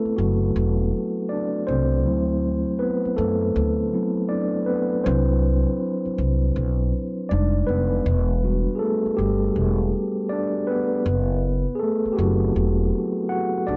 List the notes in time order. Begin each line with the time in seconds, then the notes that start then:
Already playing: A3 B3 C4 E4 A4 B4
0.05 muted upright bass stroke
0.17 F#1 F#3 F#4
0.56 E1
1.29 D4 D5
1.67 C2 C4 C5
2.05 D2 F#3 A3 C4 E4
2.79 B3 B4
3.05 muted upright bass stroke
3.17 F#2 A3 A4
3.56 D2
3.93 F#3 B3 C4 E4
4.29 D4 D5
4.66 B3 B4
5.04 C2 F#3 C4 D4 E4 B4 C5
6.05 muted upright bass stroke
6.18 C2
6.56 B1
7.29 F1 G3 G#3 D4 D#4 D5
7.67 F1 B3 B4
8.06 E1
8.44 G3 D4 F#4
8.75 G#4 A4
8.82 A3
9.06 muted upright bass stroke
9.17 G1 G3 G4
9.56 E1
10.29 D4 D5
10.67 B3 B4
11.06 F#1
11.75 G#4
11.79 A3 A4
12.05 muted upright bass stroke
12.13 G4
12.17 F#1 F#3 A3 C4 E4 F#4
12.56 E1
13.29 F#4 F#5
13.67 C2 D4 D5